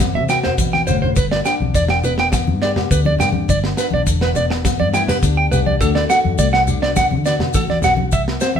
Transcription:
Already playing: fingered electric bass A1, nylon-string guitar G3 C4 E4
0.00 nylon-string guitar G2, kick, snare, high conga, maracas
0.15 fingered electric bass C3, clean electric guitar E5, high conga
0.29 nylon-string guitar F#4, clean electric guitar G5, snare, maracas
0.43 clean electric guitar C5, snare, low conga, low agogo
0.58 fingered electric bass A1, nylon-string guitar B2, kick, high conga, maracas
0.73 clean electric guitar G5, snare, high conga
0.87 fingered electric bass G1, nylon-string guitar A2, clean electric guitar C5, low conga, low agogo, maracas
1.02 clean electric guitar C5, low conga
1.16 fingered electric bass G1, nylon-string guitar G2, clean electric guitar B4, kick, maracas
1.31 clean electric guitar D5, snare
1.45 nylon-string guitar D4, clean electric guitar G5, snare, low agogo, maracas
1.60 fingered electric bass B1, high conga
1.74 fingered electric bass E1, nylon-string guitar D3, clean electric guitar D5, kick, snare, maracas
1.88 clean electric guitar G5, snare, low agogo
2.04 nylon-string guitar B3, clean electric guitar B4, low conga, maracas
2.18 clean electric guitar G5, snare
2.32 nylon-string guitar G2, muted clean electric guitar stroke, kick, snare, high conga, low agogo, maracas
2.47 fingered electric bass G2, high conga
2.62 nylon-string guitar G4, clean electric guitar D5, snare
2.76 snare, low conga, low agogo
2.91 fingered electric bass D2, nylon-string guitar D3 D4, clean electric guitar B4, kick, maracas
3.05 clean electric guitar D5, high conga
3.19 fingered electric bass G2, nylon-string guitar G4, clean electric guitar G5, snare, low conga, low agogo, maracas
3.33 high conga
3.49 fingered electric bass G1, nylon-string guitar G2, clean electric guitar D5, kick, maracas
3.64 snare
3.77 nylon-string guitar D4, clean electric guitar B4, snare, low agogo, maracas
3.91 fingered electric bass B1, clean electric guitar D5, high conga
4.07 fingered electric bass E1, nylon-string guitar D3, kick, maracas
4.21 clean electric guitar B4, snare, low agogo
4.35 nylon-string guitar B3, clean electric guitar D5, low conga, maracas
4.50 muted clean electric guitar stroke, snare
4.65 nylon-string guitar G2, kick, snare, high conga, low agogo, maracas
4.79 fingered electric bass G2, clean electric guitar D5, high conga
4.94 nylon-string guitar E4, clean electric guitar G5, snare, maracas
5.08 nylon-string guitar G4, clean electric guitar B4, snare, low conga, low agogo
5.23 fingered electric bass D2, nylon-string guitar D3 D4, kick, maracas
5.37 clean electric guitar G5
5.51 fingered electric bass C2, nylon-string guitar G4, clean electric guitar B4, low conga, low agogo, maracas
5.66 clean electric guitar D5, high conga
5.80 fingered electric bass D2, nylon-string guitar D3 A3 D4 F#4, clean electric guitar A4, kick, maracas
5.95 clean electric guitar D5, snare
6.09 nylon-string guitar F#4, clean electric guitar F#5, snare, low agogo, maracas
6.25 fingered electric bass F#2, high conga
6.38 fingered electric bass C2, nylon-string guitar A3, clean electric guitar D5, kick, maracas
6.53 clean electric guitar F#5, snare, low agogo
6.67 nylon-string guitar D4, low conga, maracas
6.82 clean electric guitar D5, snare
6.96 nylon-string guitar A2, clean electric guitar F#5, kick, snare, high conga, low agogo, maracas
7.11 fingered electric bass D3, high conga
7.26 nylon-string guitar F#4, clean electric guitar D5, snare, maracas
7.39 snare, low conga, low agogo
7.54 fingered electric bass A1, nylon-string guitar A3 F#4, clean electric guitar A4, kick, maracas
7.68 clean electric guitar D5, snare, high conga
7.82 fingered electric bass B1, nylon-string guitar F#4, clean electric guitar F#5, snare, low conga, low agogo, maracas
7.97 high conga
8.12 fingered electric bass C2, nylon-string guitar C3, clean electric guitar E5, kick, maracas
8.28 snare
8.40 nylon-string guitar C4, clean electric guitar C5, snare, low agogo, maracas
8.55 clean electric guitar E5, high conga

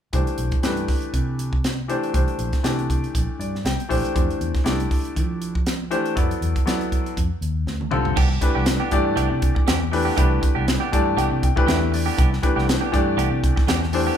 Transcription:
0.13 fingered electric bass C2, grand piano E3 A3 D4 G4 C5, kick, closed hi-hat
0.27 closed hi-hat
0.38 fingered electric bass B1, closed hi-hat
0.52 kick, closed hi-hat
0.63 fingered electric bass G2, grand piano E3 A3 D4 G4 B4, snare, closed hi-hat
0.77 closed hi-hat
0.88 kick, snare, open hi-hat
1.02 closed hi-hat
1.14 fingered electric bass C3, kick, closed hi-hat
1.39 closed hi-hat
1.53 kick
1.64 snare, closed hi-hat
1.88 grand piano E3 A3 D4 G4 C5, closed hi-hat
2.03 closed hi-hat
2.13 fingered electric bass C2, grand piano E3 A3 D4 G4 C5, kick, closed hi-hat
2.28 closed hi-hat
2.39 fingered electric bass A#1, closed hi-hat
2.53 kick, snare, closed hi-hat
2.63 fingered electric bass C3, grand piano E3 A3 D4 G4 D5, snare, closed hi-hat
2.79 closed hi-hat
2.90 kick, closed hi-hat
3.04 closed hi-hat
3.15 fingered electric bass A#1, kick, closed hi-hat
3.39 fingered electric bass G2, grand piano D5, closed hi-hat
3.55 snare
3.65 fingered electric bass C2, grand piano G5, snare, closed hi-hat
3.80 closed hi-hat
3.89 fingered electric bass A#1, grand piano E3 A3 D4 G4 C5, kick, open hi-hat
4.05 closed hi-hat
4.14 fingered electric bass F2, grand piano E3 A3 D4 G4 C5, kick, closed hi-hat
4.30 closed hi-hat
4.41 fingered electric bass E2, closed hi-hat
4.55 kick, snare, closed hi-hat
4.64 fingered electric bass C2, grand piano A3 D4 E4 G4 D5, snare, closed hi-hat
4.80 closed hi-hat
4.91 kick, open hi-hat
5.05 closed hi-hat
5.16 fingered electric bass F3, kick, closed hi-hat
5.42 closed hi-hat
5.55 kick
5.66 snare, closed hi-hat
5.90 grand piano E3 A3 D4 G4 C5, closed hi-hat
6.06 closed hi-hat
6.15 fingered electric bass F#2, grand piano F#3 B3 E4 A4 D5, kick, closed hi-hat
6.31 closed hi-hat
6.41 fingered electric bass E2, closed hi-hat
6.56 kick, closed hi-hat
6.66 grand piano F#3 B3 E4 A4 D5, fingered electric bass F#3, snare, closed hi-hat
6.81 closed hi-hat
6.92 kick, closed hi-hat
7.06 closed hi-hat
7.17 fingered electric bass F2, kick, closed hi-hat
7.41 fingered electric bass D#2, closed hi-hat
7.66 fingered electric bass D2, snare
7.81 high tom
7.91 fingered electric bass C2, grand piano D3 G3 C4 F4 A4, mid tom
8.05 floor tom
8.16 fingered electric bass C2, clean electric guitar E3 B3 D4 G4, kick, crash
8.30 muted clean electric guitar stroke
8.41 grand piano E3 A3 D4 G4 B4, muted clean electric guitar stroke, muted fingered electric bass stroke, kick, closed hi-hat
8.55 fingered electric bass C2, clean electric guitar B3 D4 G4
8.66 muted clean electric guitar stroke, snare, closed hi-hat
8.80 clean electric guitar B3 D4 G4
8.91 fingered electric bass G2, grand piano E3 A3 D4 G4 D5, kick, closed hi-hat
9.05 muted clean electric guitar stroke
9.16 fingered electric bass C2, clean electric guitar E3 B3 D4 G4, closed hi-hat
9.30 fingered electric bass C3, muted clean electric guitar stroke
9.42 kick, closed hi-hat
9.55 muted clean electric guitar stroke, kick
9.67 fingered electric bass E2, clean electric guitar E3 B3 D4 G4, snare, closed hi-hat
9.80 muted clean electric guitar stroke
9.91 grand piano E3 A3 D4 G4 B4, muted clean electric guitar stroke, open hi-hat
10.05 clean electric guitar B3 D4 G4
10.16 fingered electric bass C2, clean electric guitar E3 B3 D4 G4, grand piano E3 A3 D4 G4 B4, kick, closed hi-hat
10.30 muted clean electric guitar stroke
10.41 muted clean electric guitar stroke, kick, closed hi-hat
10.55 fingered electric bass C2, clean electric guitar B3 D4 G4
10.67 muted clean electric guitar stroke, snare, closed hi-hat
10.80 clean electric guitar B3 D4 G4
10.92 fingered electric bass G2, grand piano E3 A3 D4 G4 D5 A5, kick, closed hi-hat
11.06 muted clean electric guitar stroke
11.17 fingered electric bass C2, clean electric guitar E3 B3 D4 G4, grand piano G5, closed hi-hat
11.31 fingered electric bass C3, muted clean electric guitar stroke
11.43 grand piano G5, kick, closed hi-hat
11.56 grand piano E3 A3 D4 G4 B4, muted clean electric guitar stroke, kick
11.67 fingered electric bass E2, clean electric guitar E3 B3 D4 G4, grand piano E5, snare, closed hi-hat
11.81 muted clean electric guitar stroke
11.92 grand piano D5, muted clean electric guitar stroke, open hi-hat
12.06 clean electric guitar B3 D4 G4
12.17 fingered electric bass C2, clean electric guitar E3 B3 D4 G4, kick, closed hi-hat
12.31 muted clean electric guitar stroke, snare
12.42 grand piano E3 A3 D4 G4 B4, muted clean electric guitar stroke, kick, closed hi-hat
12.56 fingered electric bass C2, clean electric guitar B3 D4 G4, snare
12.67 muted clean electric guitar stroke, snare, closed hi-hat
12.81 clean electric guitar B3 D4 G4
12.92 fingered electric bass G2, grand piano E3 A3 D4 G4 D5, kick, closed hi-hat
13.06 muted clean electric guitar stroke
13.17 fingered electric bass C2, clean electric guitar E3 B3 D4 G4, closed hi-hat
13.31 fingered electric bass C3, muted clean electric guitar stroke
13.44 kick, closed hi-hat
13.56 muted clean electric guitar stroke, kick, snare
13.67 fingered electric bass E2, clean electric guitar E3 B3 D4 G4, snare, closed hi-hat
13.82 muted clean electric guitar stroke, snare
13.93 grand piano E3 A3 D4 G4 C5, muted clean electric guitar stroke, open hi-hat
14.07 clean electric guitar B3 D4 G4

